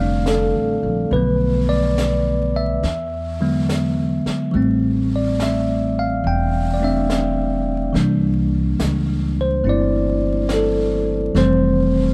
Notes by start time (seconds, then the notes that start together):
Already playing: F1 D3 G3 C4 D5 F5
0.00 A3 D4
0.26 A4, snare, hi-hat pedal
0.55 A1
0.83 A#1
1.11 B1 D3 F3 A3 B4, brush sweep
1.16 B3
1.69 D5
1.98 snare, hi-hat pedal
2.56 E5
2.83 E2, brush sweep, snare
3.41 D3 F#3 G#3 B3
3.69 snare, hi-hat pedal
4.26 muted upright bass stroke, snare
4.51 A1 E3 G3 A3, brush sweep
4.57 C4
5.16 D5
5.40 E5, snare, hi-hat pedal
5.99 F5
6.24 E1 G5, brush sweep
6.74 D5
6.80 A3 C4 D4
6.84 E5
7.10 snare, hi-hat pedal
7.93 C2 E3 G3 A#3, brush sweep, snare
7.97 D4
8.79 C#2, snare, hi-hat pedal
9.41 C5
9.64 G1 A3 C4 E4, brush sweep
9.69 D5
10.49 snare, hi-hat pedal
10.54 A4
11.35 F1 E3 G3 A3 C4 C5, brush sweep, snare